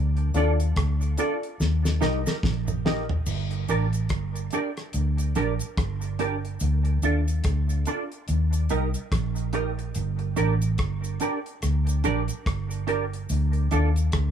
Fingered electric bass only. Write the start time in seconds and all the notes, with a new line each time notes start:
Already playing: D2
0.34 D#2
0.77 D2
1.60 D#2
2.02 C2
2.44 A#1
3.26 G1
3.69 A1
4.10 G1
4.94 D2
5.36 A#1
5.78 G1
6.61 D2
7.02 D#2
7.45 D2
8.29 D#2
8.71 C2
9.12 A#1
9.96 G1
10.37 A1
10.79 G1
11.63 D2
12.05 A#1
12.46 G1
13.30 D2
13.72 D#2
14.13 D2